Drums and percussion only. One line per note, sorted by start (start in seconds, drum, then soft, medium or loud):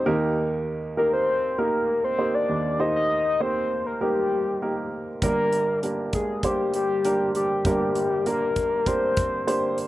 5.22 kick medium
5.22 closed hi-hat medium
5.53 closed hi-hat medium
5.83 closed hi-hat medium
6.13 kick medium
6.13 closed hi-hat medium
6.43 kick medium
6.43 closed hi-hat medium
6.74 closed hi-hat medium
7.05 closed hi-hat medium
7.35 closed hi-hat medium
7.65 kick medium
7.65 closed hi-hat medium
7.95 closed hi-hat medium
8.26 closed hi-hat medium
8.56 kick medium
8.56 closed hi-hat medium
8.86 kick medium
8.86 closed hi-hat medium
9.17 kick medium
9.17 closed hi-hat medium
9.48 closed hi-hat medium
9.78 closed hi-hat medium